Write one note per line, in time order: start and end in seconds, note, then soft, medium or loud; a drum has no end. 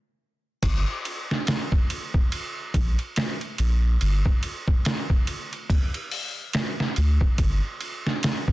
0.63 0.84 G1 loud
0.63 kick loud
0.63 crash medium
0.63 ride medium
1.05 ride medium
1.31 snare soft
1.47 snare loud
1.47 ride medium
1.72 kick medium
1.90 ride medium
2.14 kick medium
2.32 ride medium
2.74 2.96 A#1 medium
2.74 kick loud
2.74 ride medium
2.99 ride soft
3.16 snare loud
3.16 ride medium
3.41 ride soft
3.58 3.97 A#1 loud
3.58 ride medium
4.01 4.23 G1 loud
4.01 ride medium
4.26 kick medium
4.43 ride medium
4.68 kick loud
4.85 snare loud
4.85 ride medium
5.10 kick loud
5.27 ride medium
5.53 ride soft
5.70 kick loud
5.70 ride medium
5.94 ride soft
6.12 open hi-hat medium
6.53 snare loud
6.53 ride medium
6.80 snare medium
6.96 7.19 D2 medium
6.96 ride medium
7.21 kick loud
7.38 7.61 G1 loud
7.38 kick loud
7.38 ride medium
7.81 ride medium
8.07 snare soft
8.23 snare loud
8.23 ride medium
8.48 kick medium